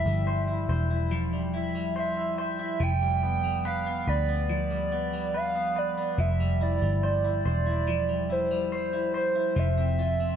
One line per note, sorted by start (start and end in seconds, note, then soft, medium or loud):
0.00 1.11 F3 medium
0.00 0.47 E4 medium
0.00 0.27 C5 medium
0.00 1.13 E5 loud
0.06 0.66 G1 medium
0.06 1.32 G3 medium
0.27 0.68 C5 medium
0.48 0.89 E4 medium
0.69 2.76 E1 medium
0.69 1.95 C5 medium
0.90 1.53 E4 medium
1.11 2.80 F3 medium
1.33 1.75 G3 medium
1.54 2.16 E4 medium
1.54 1.94 E5 loud
1.75 3.01 G3 medium
1.96 2.37 C5 medium
1.96 2.37 E5 loud
2.17 2.58 E4 medium
2.38 2.89 C5 medium
2.38 2.84 E5 loud
2.59 2.89 E4 medium
2.80 4.03 F1 loud
2.80 4.48 F3 medium
2.80 3.66 G5 loud
3.02 3.43 G3 medium
3.23 3.85 B3 medium
3.44 4.70 G3 medium
3.65 4.06 B4 medium
3.65 4.10 F5 loud
3.86 4.27 B3 medium
4.08 6.15 D2 medium
4.08 5.33 B4 medium
4.08 4.50 D5 loud
4.29 4.91 B3 medium
4.49 6.17 F3 medium
4.49 5.38 D5 loud
4.71 5.13 G3 medium
4.92 5.54 B3 medium
5.13 6.40 G3 medium
5.34 5.75 B4 medium
5.34 5.80 F5 loud
5.55 5.96 B3 medium
5.76 6.27 B4 medium
5.76 6.21 D5 loud
5.98 6.27 B3 medium
6.18 6.79 F1 loud
6.18 7.87 F3 medium
6.18 6.64 E5 loud
6.40 6.81 G3 medium
6.61 7.23 E4 medium
6.61 7.04 D5 loud
6.82 7.42 G1 medium
6.82 8.08 G3 medium
7.03 7.45 C5 medium
7.03 8.34 D5 loud
7.24 7.65 E4 medium
7.46 9.53 E1 medium
7.46 8.72 C5 medium
7.66 8.29 E4 medium
7.88 9.56 F3 medium
8.09 8.50 G3 medium
8.30 8.92 E4 medium
8.30 8.73 C5 medium
8.51 9.65 G3 medium
8.72 9.14 C5 medium
8.72 9.13 C5 loud
8.93 9.34 E4 medium
9.14 10.36 C5 medium
9.14 9.61 C5 medium
9.35 9.65 E4 medium
9.56 10.36 F1 loud
9.56 10.36 F3 medium
9.56 10.36 E5 loud
9.78 10.20 C4 medium
9.99 10.36 F4 medium
10.20 10.36 C4 medium